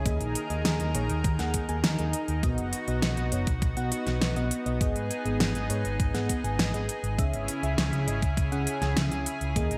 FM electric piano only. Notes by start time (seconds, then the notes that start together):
0.06 A#3 G#4 D#5
0.50 A#3 G#4 D#5
0.95 A#3 G#4 C#5
1.39 A#3 G#4 F#5
1.69 A#3 G#4 G#5
1.99 A#3 G#4 D#5
2.43 B3 F#4 D#5
2.88 B3 F#4 D#5
3.32 B3 F#4 C#5
3.77 B3 F#4 F#5
3.92 B3 F#4 D#5
4.36 B3 F#4 D#5
4.66 B3 F#4 D#5
4.81 B3 G#4 D#5
5.25 B3 G#4 D#5
5.70 B3 G#4 C#5
6.14 B3 G#4 F#5
6.44 B3 G#4 G#5
6.74 B3 G#4 D#5
7.19 C#4 G#4 E5
7.63 C#4 G#4 E5
8.08 C#4 G#4 D#5
8.52 C#4 G#4 F#5
8.82 C#4 G#4 G#5
9.11 C#4 G#4 E5
9.56 A#3 G#4 D#5